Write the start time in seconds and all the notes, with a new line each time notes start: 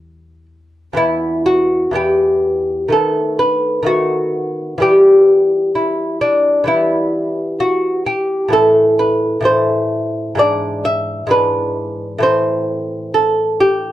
Already playing: E2 E3 G3 E4
0.93 E2 E3 B3 E4
1.46 F#4
1.91 E2 E3 B3
1.95 G4
2.88 D#3 A3 B3
2.92 A4
3.39 B4
3.83 D#3 A3 B3 F#4
4.78 E3 G3 B3
4.82 G4
5.75 E4
6.21 D4
6.64 E3 G3 B3 E4
7.60 F#4
8.06 G4
8.48 A2 E3 A3
8.53 A4
8.99 B4
9.41 A2 E3 A3
9.45 C5
10.35 G#2 E3 D4
10.39 D5
10.85 E5
11.27 G#2 E3 D4
11.31 B4
12.18 A2 E3 C4
12.23 C5
13.14 A4
13.60 G4